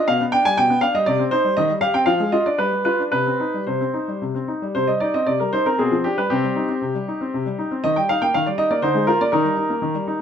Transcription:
0.08 0.20 B2 medium
0.08 0.23 F5 medium
0.21 0.34 B3 soft
0.32 0.46 D4 soft
0.32 0.45 G5 medium
0.45 0.58 G3 soft
0.45 0.58 G#5 medium
0.57 0.70 B2 soft
0.57 0.82 G5 medium
0.70 0.83 B3 soft
0.81 0.95 D4 soft
0.81 0.94 F5 medium
0.95 1.07 G3 soft
0.95 1.07 D#5 medium
1.06 1.19 C3 medium
1.06 1.21 D5 medium
1.19 1.32 C4 soft
1.31 1.44 D#4 soft
1.31 1.53 C5 medium
1.45 1.56 G3 soft
1.57 1.69 D#3 soft
1.57 1.71 D#5 medium
1.70 1.82 G3 soft
1.81 1.95 G4 soft
1.81 1.93 F5 medium
1.94 2.06 C4 soft
1.94 2.06 G5 medium
2.06 2.19 F3 soft
2.06 2.29 F5 medium
2.20 2.33 G#3 soft
2.32 2.46 F4 soft
2.32 2.45 D#5 medium
2.46 2.59 D4 soft
2.46 2.59 D5 medium
2.58 2.71 G3 soft
2.58 2.83 B4 medium
2.73 2.87 G3 soft
2.85 3.00 F4 soft
2.85 3.02 B4 medium
2.99 3.13 D4 soft
3.12 3.26 C3 soft
3.12 3.63 B4 medium
3.27 3.41 C4 soft
3.40 3.55 D#4 soft
3.54 3.68 G3 soft
3.67 3.81 C3 soft
3.67 4.21 C5 soft
3.81 3.95 C4 soft
3.94 4.08 D#4 soft
4.08 4.22 G3 soft
4.22 4.35 C3 soft
4.35 4.49 C4 soft
4.48 4.63 D#4 soft
4.62 4.75 G3 soft
4.75 4.88 C3 soft
4.75 4.88 C5 medium
4.88 5.02 G3 soft
4.88 5.01 D#5 medium
5.00 5.15 D#4 soft
5.00 5.14 D5 medium
5.14 5.28 C4 soft
5.14 5.27 D#5 medium
5.26 5.40 C3 soft
5.26 5.40 D5 medium
5.40 5.54 G3 soft
5.40 5.53 A#4 soft
5.53 5.67 D#4 soft
5.53 5.66 C5 medium
5.66 5.78 C4 soft
5.66 5.79 A#4 medium
5.79 5.92 B2 soft
5.79 6.04 C4 soft
5.79 5.94 G#4 medium
5.92 6.06 F3 soft
6.04 6.18 D4 soft
6.04 6.17 G4 medium
6.18 6.31 G3 soft
6.18 6.31 B4 medium
6.30 6.43 C3 soft
6.30 6.67 C4 medium
6.30 7.79 G4 medium
6.44 6.57 G3 soft
6.56 6.70 D#4 soft
6.69 6.82 C4 soft
6.82 6.94 C3 soft
6.95 7.08 G3 soft
7.08 7.21 D#4 soft
7.21 7.34 C4 soft
7.34 7.46 C3 soft
7.46 7.59 G3 soft
7.58 7.71 D#4 soft
7.71 7.83 C4 soft
7.84 7.96 D#3 soft
7.84 7.96 D#5 medium
7.96 8.10 G3 soft
7.96 8.09 G5 medium
8.09 8.22 D#4 soft
8.09 8.21 F5 medium
8.22 8.35 A#3 soft
8.22 8.34 G5 medium
8.34 8.46 D#3 soft
8.34 8.46 F5 medium
8.46 8.59 G3 soft
8.46 8.58 D5 medium
8.58 8.71 D#4 soft
8.58 8.70 D#5 medium
8.71 8.83 A#3 soft
8.71 8.83 D5 medium
8.82 8.95 D3 medium
8.82 9.06 D#4 medium
8.82 9.07 C5 medium
8.95 9.08 G#3 soft
9.07 9.21 F4 soft
9.07 9.20 A#4 medium
9.21 9.33 A#3 soft
9.21 9.33 D5 medium
9.32 9.45 D#3 medium
9.32 9.56 D#4 medium
9.32 10.21 A#4 medium
9.45 9.58 G3 soft
9.57 9.70 D#4 soft
9.70 9.83 A#3 soft
9.82 9.94 D#3 soft
9.95 10.07 G3 soft
10.07 10.20 D#4 soft

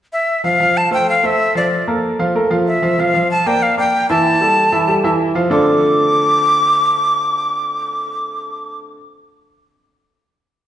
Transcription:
0.13 0.42 E5 medium
0.44 0.57 F3 medium
0.44 0.57 F4 medium
0.44 0.57 F5 medium
0.44 0.79 F5 loud
0.60 0.86 F3 medium
0.60 0.86 F4 medium
0.60 0.86 F5 medium
0.77 0.92 A5 medium
0.91 1.17 A3 medium
0.91 1.17 A4 medium
0.91 1.17 C5 medium
0.91 1.07 G5 loud
1.09 1.27 F5 medium
1.23 1.49 A3 medium
1.23 1.49 A4 medium
1.23 1.50 C5 medium
1.23 1.56 E5 loud
1.55 1.81 F3 medium
1.55 1.81 F4 medium
1.55 1.86 D5 medium
1.55 1.81 F5 medium
1.87 2.13 A#3 medium
1.87 2.13 A4 medium
1.87 2.13 A#4 medium
2.19 2.32 F3 medium
2.19 2.32 F4 medium
2.19 2.32 F5 medium
2.35 2.48 A3 medium
2.35 2.48 A4 medium
2.35 2.48 A#4 medium
2.50 2.76 F3 medium
2.50 2.77 F4 medium
2.50 2.77 F5 medium
2.67 3.02 E5 medium
2.82 2.95 F3 medium
2.82 2.95 F4 medium
2.82 2.95 F5 medium
2.99 3.11 F3 medium
2.99 3.12 F4 medium
2.99 3.12 F5 medium
2.99 3.30 F5 loud
3.14 3.40 F3 medium
3.14 3.40 F4 medium
3.14 3.40 F5 medium
3.31 3.48 A5 loud
3.46 3.72 A#3 medium
3.46 3.72 A#4 medium
3.46 3.72 D5 medium
3.46 3.64 G5 loud
3.63 3.78 F5 loud
3.78 4.03 A#3 medium
3.78 4.03 A#4 medium
3.78 4.04 D5 medium
3.78 4.07 G5 loud
4.10 4.35 E3 medium
4.10 4.35 E4 medium
4.10 4.35 E5 medium
4.10 5.15 A5 loud
4.41 4.66 G3 medium
4.41 4.67 G4 medium
4.41 4.67 A4 medium
4.72 4.85 E3 medium
4.72 4.85 E4 medium
4.72 4.85 E5 medium
4.88 5.00 G3 medium
4.88 5.01 G4 medium
4.88 5.01 A4 medium
5.04 5.29 E3 medium
5.04 5.29 E4 medium
5.04 5.30 E5 medium
5.35 5.48 F3 medium
5.35 5.48 F4 medium
5.35 5.48 F5 medium
5.50 8.96 D3 medium
5.50 8.96 A3 medium
5.50 8.96 C4 medium
5.50 8.96 D4 medium
5.50 8.97 F4 medium
5.50 8.97 A4 loud
5.50 8.78 D6 loud

